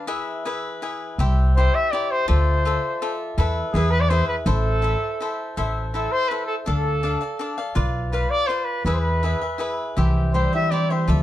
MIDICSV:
0, 0, Header, 1, 5, 480
1, 0, Start_track
1, 0, Key_signature, 0, "minor"
1, 0, Tempo, 364299
1, 109, Time_signature, 3, 2, 24, 8
1, 6351, Tempo, 368324
1, 14700, End_track
2, 0, Start_track
2, 0, Title_t, "Trumpet"
2, 0, Program_c, 0, 56
2, 2057, Note_on_c, 0, 72, 87
2, 2303, Note_on_c, 0, 76, 105
2, 2322, Note_off_c, 0, 72, 0
2, 2522, Note_on_c, 0, 74, 80
2, 2542, Note_off_c, 0, 76, 0
2, 2779, Note_on_c, 0, 72, 84
2, 2799, Note_off_c, 0, 74, 0
2, 3010, Note_off_c, 0, 72, 0
2, 3017, Note_on_c, 0, 72, 66
2, 4171, Note_off_c, 0, 72, 0
2, 4909, Note_on_c, 0, 68, 80
2, 5147, Note_on_c, 0, 71, 100
2, 5167, Note_off_c, 0, 68, 0
2, 5276, Note_on_c, 0, 74, 88
2, 5296, Note_off_c, 0, 71, 0
2, 5392, Note_on_c, 0, 72, 90
2, 5412, Note_off_c, 0, 74, 0
2, 5628, Note_off_c, 0, 72, 0
2, 5636, Note_on_c, 0, 71, 72
2, 5741, Note_off_c, 0, 71, 0
2, 5911, Note_on_c, 0, 69, 72
2, 7062, Note_off_c, 0, 69, 0
2, 7806, Note_on_c, 0, 69, 75
2, 8041, Note_on_c, 0, 72, 94
2, 8060, Note_off_c, 0, 69, 0
2, 8256, Note_on_c, 0, 71, 71
2, 8276, Note_off_c, 0, 72, 0
2, 8482, Note_off_c, 0, 71, 0
2, 8490, Note_on_c, 0, 69, 72
2, 8604, Note_off_c, 0, 69, 0
2, 8719, Note_on_c, 0, 69, 65
2, 9884, Note_off_c, 0, 69, 0
2, 10645, Note_on_c, 0, 71, 75
2, 10888, Note_on_c, 0, 74, 101
2, 10908, Note_off_c, 0, 71, 0
2, 11105, Note_on_c, 0, 72, 80
2, 11125, Note_off_c, 0, 74, 0
2, 11335, Note_on_c, 0, 71, 72
2, 11354, Note_off_c, 0, 72, 0
2, 11590, Note_off_c, 0, 71, 0
2, 11608, Note_on_c, 0, 71, 57
2, 11708, Note_on_c, 0, 72, 44
2, 11728, Note_off_c, 0, 71, 0
2, 11787, Note_on_c, 0, 71, 66
2, 11806, Note_off_c, 0, 72, 0
2, 12823, Note_off_c, 0, 71, 0
2, 13542, Note_on_c, 0, 72, 68
2, 13780, Note_off_c, 0, 72, 0
2, 13812, Note_on_c, 0, 76, 88
2, 14023, Note_on_c, 0, 74, 79
2, 14043, Note_off_c, 0, 76, 0
2, 14281, Note_on_c, 0, 72, 60
2, 14301, Note_off_c, 0, 74, 0
2, 14512, Note_off_c, 0, 72, 0
2, 14700, End_track
3, 0, Start_track
3, 0, Title_t, "Cavaquinho"
3, 0, Program_c, 1, 24
3, 97, Note_on_c, 1, 64, 75
3, 103, Note_on_c, 1, 68, 74
3, 105, Note_on_c, 1, 76, 89
3, 108, Note_on_c, 1, 71, 70
3, 582, Note_off_c, 1, 68, 0
3, 589, Note_off_c, 1, 71, 0
3, 594, Note_off_c, 1, 64, 0
3, 598, Note_on_c, 1, 68, 56
3, 600, Note_on_c, 1, 64, 49
3, 610, Note_on_c, 1, 71, 70
3, 613, Note_off_c, 1, 76, 0
3, 618, Note_on_c, 1, 76, 67
3, 1073, Note_off_c, 1, 68, 0
3, 1076, Note_off_c, 1, 64, 0
3, 1077, Note_off_c, 1, 71, 0
3, 1081, Note_on_c, 1, 64, 52
3, 1089, Note_on_c, 1, 68, 63
3, 1093, Note_on_c, 1, 71, 54
3, 1095, Note_off_c, 1, 76, 0
3, 1100, Note_on_c, 1, 76, 52
3, 1563, Note_off_c, 1, 64, 0
3, 1568, Note_on_c, 1, 64, 59
3, 1574, Note_off_c, 1, 68, 0
3, 1577, Note_off_c, 1, 76, 0
3, 1578, Note_off_c, 1, 71, 0
3, 1579, Note_on_c, 1, 67, 63
3, 1583, Note_on_c, 1, 72, 73
3, 1583, Note_on_c, 1, 76, 63
3, 2062, Note_off_c, 1, 67, 0
3, 2064, Note_off_c, 1, 72, 0
3, 2068, Note_off_c, 1, 64, 0
3, 2074, Note_on_c, 1, 64, 49
3, 2078, Note_on_c, 1, 67, 59
3, 2087, Note_on_c, 1, 72, 52
3, 2096, Note_off_c, 1, 76, 0
3, 2101, Note_on_c, 1, 76, 49
3, 2526, Note_off_c, 1, 67, 0
3, 2536, Note_off_c, 1, 72, 0
3, 2537, Note_off_c, 1, 64, 0
3, 2542, Note_on_c, 1, 64, 44
3, 2542, Note_on_c, 1, 67, 52
3, 2552, Note_on_c, 1, 72, 44
3, 2559, Note_off_c, 1, 76, 0
3, 2564, Note_on_c, 1, 76, 60
3, 2995, Note_off_c, 1, 64, 0
3, 2995, Note_off_c, 1, 67, 0
3, 2998, Note_off_c, 1, 72, 0
3, 2998, Note_off_c, 1, 76, 0
3, 3000, Note_on_c, 1, 69, 57
3, 3001, Note_on_c, 1, 65, 68
3, 3003, Note_on_c, 1, 74, 69
3, 3003, Note_on_c, 1, 76, 76
3, 3480, Note_off_c, 1, 65, 0
3, 3487, Note_off_c, 1, 69, 0
3, 3492, Note_off_c, 1, 74, 0
3, 3496, Note_on_c, 1, 65, 54
3, 3503, Note_on_c, 1, 69, 52
3, 3516, Note_off_c, 1, 76, 0
3, 3519, Note_on_c, 1, 74, 60
3, 3521, Note_on_c, 1, 76, 59
3, 3961, Note_off_c, 1, 69, 0
3, 3964, Note_off_c, 1, 65, 0
3, 3968, Note_off_c, 1, 74, 0
3, 3977, Note_on_c, 1, 69, 61
3, 3979, Note_on_c, 1, 65, 53
3, 3984, Note_off_c, 1, 76, 0
3, 3984, Note_on_c, 1, 74, 51
3, 3989, Note_on_c, 1, 76, 74
3, 4440, Note_off_c, 1, 69, 0
3, 4444, Note_off_c, 1, 65, 0
3, 4449, Note_on_c, 1, 64, 68
3, 4454, Note_off_c, 1, 74, 0
3, 4456, Note_on_c, 1, 69, 78
3, 4469, Note_on_c, 1, 71, 71
3, 4471, Note_off_c, 1, 76, 0
3, 4477, Note_on_c, 1, 76, 86
3, 4926, Note_off_c, 1, 69, 0
3, 4933, Note_off_c, 1, 71, 0
3, 4934, Note_off_c, 1, 64, 0
3, 4940, Note_on_c, 1, 64, 60
3, 4956, Note_on_c, 1, 68, 60
3, 4957, Note_on_c, 1, 71, 68
3, 4962, Note_off_c, 1, 76, 0
3, 4968, Note_on_c, 1, 76, 58
3, 5396, Note_off_c, 1, 68, 0
3, 5401, Note_off_c, 1, 64, 0
3, 5401, Note_off_c, 1, 71, 0
3, 5407, Note_on_c, 1, 64, 68
3, 5412, Note_on_c, 1, 68, 52
3, 5417, Note_on_c, 1, 71, 61
3, 5429, Note_off_c, 1, 76, 0
3, 5434, Note_on_c, 1, 76, 52
3, 5870, Note_off_c, 1, 64, 0
3, 5875, Note_off_c, 1, 68, 0
3, 5875, Note_on_c, 1, 64, 74
3, 5881, Note_on_c, 1, 69, 70
3, 5883, Note_off_c, 1, 71, 0
3, 5887, Note_off_c, 1, 76, 0
3, 5889, Note_on_c, 1, 72, 78
3, 5892, Note_on_c, 1, 76, 71
3, 6334, Note_off_c, 1, 64, 0
3, 6350, Note_on_c, 1, 64, 51
3, 6353, Note_off_c, 1, 69, 0
3, 6353, Note_off_c, 1, 72, 0
3, 6358, Note_on_c, 1, 69, 46
3, 6361, Note_off_c, 1, 76, 0
3, 6369, Note_on_c, 1, 72, 45
3, 6378, Note_on_c, 1, 76, 66
3, 6837, Note_off_c, 1, 64, 0
3, 6847, Note_off_c, 1, 72, 0
3, 6852, Note_off_c, 1, 76, 0
3, 6852, Note_on_c, 1, 64, 52
3, 6867, Note_off_c, 1, 69, 0
3, 6868, Note_on_c, 1, 76, 64
3, 6870, Note_on_c, 1, 72, 57
3, 6872, Note_on_c, 1, 69, 64
3, 7320, Note_off_c, 1, 64, 0
3, 7325, Note_off_c, 1, 69, 0
3, 7328, Note_off_c, 1, 72, 0
3, 7330, Note_on_c, 1, 69, 68
3, 7334, Note_off_c, 1, 76, 0
3, 7336, Note_on_c, 1, 64, 71
3, 7344, Note_on_c, 1, 72, 64
3, 7350, Note_on_c, 1, 76, 88
3, 7795, Note_off_c, 1, 64, 0
3, 7808, Note_off_c, 1, 69, 0
3, 7809, Note_off_c, 1, 72, 0
3, 7810, Note_on_c, 1, 64, 53
3, 7824, Note_off_c, 1, 76, 0
3, 7824, Note_on_c, 1, 69, 48
3, 7824, Note_on_c, 1, 72, 48
3, 7837, Note_on_c, 1, 76, 54
3, 8276, Note_off_c, 1, 64, 0
3, 8280, Note_off_c, 1, 69, 0
3, 8283, Note_off_c, 1, 72, 0
3, 8292, Note_off_c, 1, 76, 0
3, 8292, Note_on_c, 1, 64, 43
3, 8295, Note_on_c, 1, 69, 42
3, 8298, Note_on_c, 1, 72, 52
3, 8307, Note_on_c, 1, 76, 45
3, 8745, Note_off_c, 1, 64, 0
3, 8750, Note_on_c, 1, 62, 64
3, 8751, Note_off_c, 1, 69, 0
3, 8761, Note_off_c, 1, 72, 0
3, 8764, Note_off_c, 1, 76, 0
3, 8766, Note_on_c, 1, 74, 61
3, 8767, Note_on_c, 1, 69, 62
3, 8769, Note_on_c, 1, 77, 65
3, 9216, Note_off_c, 1, 62, 0
3, 9221, Note_off_c, 1, 69, 0
3, 9224, Note_off_c, 1, 74, 0
3, 9232, Note_on_c, 1, 62, 54
3, 9237, Note_off_c, 1, 77, 0
3, 9237, Note_on_c, 1, 69, 55
3, 9240, Note_on_c, 1, 74, 58
3, 9253, Note_on_c, 1, 77, 53
3, 9446, Note_off_c, 1, 77, 0
3, 9456, Note_off_c, 1, 74, 0
3, 9461, Note_on_c, 1, 77, 41
3, 9472, Note_on_c, 1, 74, 44
3, 9479, Note_off_c, 1, 69, 0
3, 9483, Note_off_c, 1, 62, 0
3, 9494, Note_on_c, 1, 69, 41
3, 9690, Note_off_c, 1, 69, 0
3, 9702, Note_off_c, 1, 77, 0
3, 9703, Note_on_c, 1, 62, 50
3, 9705, Note_on_c, 1, 69, 50
3, 9707, Note_off_c, 1, 74, 0
3, 9723, Note_on_c, 1, 74, 57
3, 9725, Note_on_c, 1, 77, 67
3, 9928, Note_off_c, 1, 77, 0
3, 9940, Note_off_c, 1, 74, 0
3, 9944, Note_on_c, 1, 77, 59
3, 9949, Note_off_c, 1, 69, 0
3, 9955, Note_on_c, 1, 74, 43
3, 9957, Note_off_c, 1, 62, 0
3, 9964, Note_on_c, 1, 69, 38
3, 10163, Note_off_c, 1, 77, 0
3, 10169, Note_off_c, 1, 69, 0
3, 10171, Note_on_c, 1, 65, 68
3, 10174, Note_off_c, 1, 74, 0
3, 10175, Note_on_c, 1, 71, 68
3, 10178, Note_on_c, 1, 77, 76
3, 10190, Note_on_c, 1, 74, 73
3, 10642, Note_off_c, 1, 65, 0
3, 10650, Note_off_c, 1, 71, 0
3, 10650, Note_off_c, 1, 74, 0
3, 10658, Note_on_c, 1, 65, 43
3, 10659, Note_off_c, 1, 77, 0
3, 10666, Note_on_c, 1, 71, 50
3, 10666, Note_on_c, 1, 74, 53
3, 10679, Note_on_c, 1, 77, 59
3, 11111, Note_off_c, 1, 65, 0
3, 11126, Note_off_c, 1, 71, 0
3, 11126, Note_off_c, 1, 74, 0
3, 11127, Note_on_c, 1, 65, 42
3, 11138, Note_off_c, 1, 77, 0
3, 11142, Note_on_c, 1, 71, 46
3, 11142, Note_on_c, 1, 74, 49
3, 11154, Note_on_c, 1, 77, 46
3, 11607, Note_off_c, 1, 65, 0
3, 11612, Note_on_c, 1, 64, 58
3, 11618, Note_off_c, 1, 71, 0
3, 11618, Note_off_c, 1, 74, 0
3, 11624, Note_off_c, 1, 77, 0
3, 11624, Note_on_c, 1, 68, 57
3, 11629, Note_on_c, 1, 76, 67
3, 11633, Note_on_c, 1, 71, 58
3, 12090, Note_off_c, 1, 64, 0
3, 12093, Note_off_c, 1, 68, 0
3, 12096, Note_on_c, 1, 64, 53
3, 12097, Note_off_c, 1, 71, 0
3, 12108, Note_on_c, 1, 68, 52
3, 12112, Note_on_c, 1, 71, 53
3, 12121, Note_off_c, 1, 76, 0
3, 12127, Note_on_c, 1, 76, 60
3, 12323, Note_off_c, 1, 76, 0
3, 12334, Note_off_c, 1, 71, 0
3, 12338, Note_on_c, 1, 76, 35
3, 12345, Note_off_c, 1, 68, 0
3, 12347, Note_off_c, 1, 64, 0
3, 12350, Note_on_c, 1, 71, 32
3, 12360, Note_on_c, 1, 68, 27
3, 12553, Note_off_c, 1, 68, 0
3, 12556, Note_on_c, 1, 64, 46
3, 12566, Note_off_c, 1, 76, 0
3, 12567, Note_off_c, 1, 71, 0
3, 12569, Note_on_c, 1, 68, 53
3, 12581, Note_on_c, 1, 76, 60
3, 12583, Note_on_c, 1, 71, 62
3, 13051, Note_off_c, 1, 64, 0
3, 13056, Note_on_c, 1, 64, 65
3, 13062, Note_off_c, 1, 68, 0
3, 13064, Note_off_c, 1, 76, 0
3, 13069, Note_off_c, 1, 71, 0
3, 13069, Note_on_c, 1, 76, 60
3, 13070, Note_on_c, 1, 67, 61
3, 13075, Note_on_c, 1, 72, 60
3, 13531, Note_off_c, 1, 67, 0
3, 13540, Note_off_c, 1, 72, 0
3, 13545, Note_off_c, 1, 64, 0
3, 13547, Note_on_c, 1, 67, 49
3, 13551, Note_on_c, 1, 64, 44
3, 13552, Note_off_c, 1, 76, 0
3, 13556, Note_on_c, 1, 72, 51
3, 13557, Note_on_c, 1, 76, 51
3, 13771, Note_off_c, 1, 76, 0
3, 13778, Note_off_c, 1, 72, 0
3, 13786, Note_on_c, 1, 76, 37
3, 13794, Note_on_c, 1, 72, 36
3, 13801, Note_off_c, 1, 67, 0
3, 13802, Note_off_c, 1, 64, 0
3, 13814, Note_on_c, 1, 67, 26
3, 14020, Note_off_c, 1, 67, 0
3, 14025, Note_off_c, 1, 76, 0
3, 14029, Note_off_c, 1, 72, 0
3, 14035, Note_on_c, 1, 64, 51
3, 14035, Note_on_c, 1, 67, 52
3, 14046, Note_on_c, 1, 72, 46
3, 14053, Note_on_c, 1, 76, 48
3, 14262, Note_off_c, 1, 76, 0
3, 14276, Note_off_c, 1, 72, 0
3, 14278, Note_on_c, 1, 76, 45
3, 14284, Note_off_c, 1, 64, 0
3, 14284, Note_off_c, 1, 67, 0
3, 14291, Note_on_c, 1, 72, 38
3, 14301, Note_on_c, 1, 67, 35
3, 14503, Note_on_c, 1, 65, 54
3, 14507, Note_off_c, 1, 67, 0
3, 14510, Note_off_c, 1, 76, 0
3, 14512, Note_on_c, 1, 69, 66
3, 14514, Note_off_c, 1, 72, 0
3, 14519, Note_on_c, 1, 74, 60
3, 14529, Note_on_c, 1, 76, 74
3, 14700, Note_off_c, 1, 65, 0
3, 14700, Note_off_c, 1, 69, 0
3, 14700, Note_off_c, 1, 74, 0
3, 14700, Note_off_c, 1, 76, 0
3, 14700, End_track
4, 0, Start_track
4, 0, Title_t, "Harp"
4, 0, Program_c, 2, 46
4, 13060, Note_on_c, 2, 52, 67
4, 13558, Note_on_c, 2, 55, 58
4, 13815, Note_on_c, 2, 64, 51
4, 14044, Note_on_c, 2, 60, 69
4, 14294, Note_on_c, 2, 76, 81
4, 14514, Note_on_c, 2, 53, 69
4, 14578, Note_off_c, 2, 52, 0
4, 14578, Note_off_c, 2, 55, 0
4, 14592, Note_off_c, 2, 64, 0
4, 14592, Note_off_c, 2, 76, 0
4, 14700, Note_off_c, 2, 53, 0
4, 14700, Note_off_c, 2, 60, 0
4, 14700, End_track
5, 0, Start_track
5, 0, Title_t, "Upright bass"
5, 0, Program_c, 3, 32
5, 1561, Note_on_c, 3, 36, 68
5, 2193, Note_off_c, 3, 36, 0
5, 3020, Note_on_c, 3, 38, 64
5, 3643, Note_off_c, 3, 38, 0
5, 4448, Note_on_c, 3, 40, 67
5, 4756, Note_off_c, 3, 40, 0
5, 4924, Note_on_c, 3, 40, 91
5, 5542, Note_off_c, 3, 40, 0
5, 5874, Note_on_c, 3, 33, 90
5, 6503, Note_off_c, 3, 33, 0
5, 7332, Note_on_c, 3, 33, 58
5, 7960, Note_off_c, 3, 33, 0
5, 8767, Note_on_c, 3, 38, 59
5, 9381, Note_off_c, 3, 38, 0
5, 10181, Note_on_c, 3, 35, 74
5, 10801, Note_off_c, 3, 35, 0
5, 11598, Note_on_c, 3, 40, 78
5, 12229, Note_off_c, 3, 40, 0
5, 13062, Note_on_c, 3, 36, 54
5, 13692, Note_off_c, 3, 36, 0
5, 14507, Note_on_c, 3, 38, 75
5, 14700, Note_off_c, 3, 38, 0
5, 14700, End_track
0, 0, End_of_file